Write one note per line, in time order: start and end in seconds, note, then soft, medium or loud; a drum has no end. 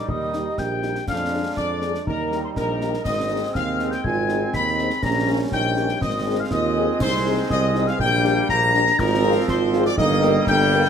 0.00 0.92 G3 medium
0.00 0.10 D#4 medium
0.00 0.92 D#4 medium
0.08 0.49 D#2 medium
0.08 1.07 G4 loud
0.08 0.55 D#5 medium
0.08 0.60 D#6 medium
0.08 concert bass drum medium
0.33 0.43 G3 medium
0.33 0.42 D#4 medium
0.33 snare medium
0.58 0.99 A#1 medium
0.58 1.08 G5 loud
0.58 1.07 G6 medium
0.58 concert bass drum medium
0.58 snare medium
0.83 0.92 G3 medium
0.83 0.92 D#4 medium
0.83 snare medium
0.96 snare medium
1.07 1.49 F2 medium
1.07 2.03 G#3 medium
1.07 2.08 D4 medium
1.07 2.03 D4 medium
1.07 1.54 F5 medium
1.07 1.54 F6 loud
1.07 concert bass drum medium
1.07 snare medium
1.07 crash soft
1.32 1.41 G#3 medium
1.32 1.41 D4 medium
1.32 1.41 G#4 medium
1.56 1.98 F2 medium
1.56 2.03 D5 loud
1.56 2.03 D6 loud
1.56 concert bass drum medium
1.56 snare medium
1.82 1.91 G#3 medium
1.82 1.91 D4 medium
1.82 1.91 G#4 medium
1.82 snare medium
1.95 snare soft
2.06 2.48 D#2 medium
2.06 3.06 G3 medium
2.06 3.05 D#4 medium
2.06 2.41 A#4 medium
2.06 2.41 A#5 medium
2.06 concert bass drum medium
2.31 2.41 A#3 medium
2.31 2.40 D#4 medium
2.31 2.40 G4 medium
2.31 snare medium
2.44 2.50 C5 medium
2.44 2.50 C6 medium
2.56 2.97 A#1 medium
2.56 3.02 A#4 loud
2.56 3.02 A#5 medium
2.56 concert bass drum medium
2.56 snare medium
2.81 2.90 A#3 medium
2.81 2.90 D#4 medium
2.81 2.90 G4 medium
2.81 snare medium
2.94 snare medium
3.05 3.47 G#1 medium
3.05 4.99 G#3 medium
3.05 5.03 C4 medium
3.05 4.00 C4 medium
3.05 3.51 D#5 loud
3.05 3.56 D#6 loud
3.05 concert bass drum medium
3.05 snare medium
3.05 crash soft
3.30 3.39 C4 medium
3.30 3.39 D#4 medium
3.30 3.39 G#4 medium
3.54 3.96 D#2 medium
3.54 3.90 F5 loud
3.54 3.92 F6 loud
3.54 concert bass drum medium
3.54 snare medium
3.79 3.89 C4 medium
3.79 3.89 D#4 medium
3.79 3.89 G#4 medium
3.79 snare medium
3.91 4.04 G5 medium
3.91 4.03 G6 medium
3.91 snare medium
4.04 4.45 G#1 medium
4.04 4.55 F4 medium
4.04 4.51 G#5 loud
4.04 4.50 G#6 loud
4.04 concert bass drum medium
4.29 4.38 C4 medium
4.29 4.38 D#4 medium
4.29 4.38 G#4 medium
4.29 snare medium
4.53 4.90 D#2 medium
4.53 5.03 D#4 medium
4.53 5.00 B5 loud
4.53 5.05 B6 loud
4.53 concert bass drum medium
4.53 snare medium
4.78 4.87 C4 medium
4.78 4.87 D#4 medium
4.78 4.87 G#4 medium
4.78 snare soft
4.90 snare medium
5.02 5.44 A#1 medium
5.02 5.98 G3 medium
5.02 5.98 C#4 medium
5.02 5.50 C#4 medium
5.02 5.39 A#5 loud
5.02 5.31 A#6 loud
5.02 concert bass drum medium
5.02 snare medium
5.02 crash soft
5.28 5.37 A#3 medium
5.28 5.37 C#4 medium
5.28 5.37 G4 medium
5.52 5.94 A#1 medium
5.52 6.20 D#4 medium
5.52 5.99 G5 loud
5.52 5.99 G6 loud
5.52 concert bass drum medium
5.52 snare medium
5.77 5.86 A#3 medium
5.77 5.86 C#4 medium
5.77 5.86 G4 medium
5.77 snare medium
5.89 snare medium
6.01 6.43 G#1 medium
6.01 8.00 G#3 loud
6.01 8.00 C4 medium
6.01 6.37 D#5 loud
6.01 6.36 D#6 loud
6.01 concert bass drum loud
6.01 snare medium
6.27 6.36 C4 medium
6.27 6.36 D#4 medium
6.27 6.36 G#4 medium
6.40 6.52 F5 loud
6.40 6.45 F6 medium
6.51 6.93 D#2 loud
6.51 6.97 F4 loud
6.51 6.98 D#5 loud
6.51 6.97 D#6 loud
6.51 concert bass drum medium
6.51 snare medium
6.76 6.85 C4 medium
6.76 6.85 D#4 medium
6.76 6.85 G#4 medium
7.00 7.42 C2 loud
7.00 7.48 D#4 loud
7.00 7.47 C5 loud
7.00 7.47 C6 loud
7.00 concert bass drum loud
7.00 snare medium
7.00 crash medium
7.25 7.34 C4 medium
7.25 7.34 D#4 medium
7.25 7.34 G#4 medium
7.50 7.92 C2 loud
7.50 7.97 C4 medium
7.50 7.85 D#5 loud
7.50 7.89 D#6 loud
7.50 concert bass drum medium
7.50 snare medium
7.75 7.84 C4 medium
7.75 7.84 D#4 medium
7.75 7.84 G#4 medium
7.75 snare medium
7.87 7.99 F5 loud
7.87 8.00 F6 loud
7.87 snare medium
7.99 8.41 A#1 loud
7.99 8.81 G3 loud
7.99 8.81 A#3 loud
7.99 9.01 D4 loud
7.99 8.46 G5 loud
7.99 8.46 G6 loud
7.99 concert bass drum medium
8.24 8.33 D4 medium
8.24 8.33 G4 medium
8.24 snare medium
8.49 8.90 A#1 loud
8.49 8.95 A#5 loud
8.49 9.01 A#6 loud
8.49 concert bass drum medium
8.49 snare medium
8.74 8.83 D4 medium
8.74 8.83 G4 medium
8.74 snare medium
8.87 snare medium
8.98 9.40 G#1 loud
8.98 9.94 F3 loud
8.98 9.98 C4 loud
8.98 9.48 F4 loud
8.98 9.48 A#4 loud
8.98 9.49 A#5 loud
8.98 concert bass drum medium
8.98 snare medium
8.98 crash soft
9.23 9.33 C4 loud
9.23 9.33 F4 medium
9.23 9.32 G#4 medium
9.48 9.90 G#1 loud
9.48 9.95 F4 loud
9.48 9.86 C5 loud
9.48 9.84 C6 loud
9.48 concert bass drum medium
9.48 snare medium
9.73 9.82 C4 medium
9.73 9.83 F4 medium
9.73 9.82 G#4 medium
9.73 snare medium
9.85 9.97 D5 loud
9.85 9.92 D6 loud
9.85 snare medium
9.97 10.39 G1 loud
9.97 10.89 G3 loud
9.97 10.89 A#3 loud
9.97 10.49 D#4 loud
9.97 10.44 D#5 loud
9.97 10.45 D#6 loud
9.97 concert bass drum loud
10.22 10.31 A#3 loud
10.22 10.31 G4 loud
10.22 10.31 A#4 medium
10.22 snare medium
10.47 10.88 G1 loud
10.47 10.89 D4 loud
10.47 10.89 G5 loud
10.47 10.89 G6 loud
10.47 concert bass drum medium
10.47 snare medium
10.72 10.82 A#3 medium
10.72 10.82 G4 medium
10.72 10.81 A#4 medium
10.72 snare medium
10.85 snare medium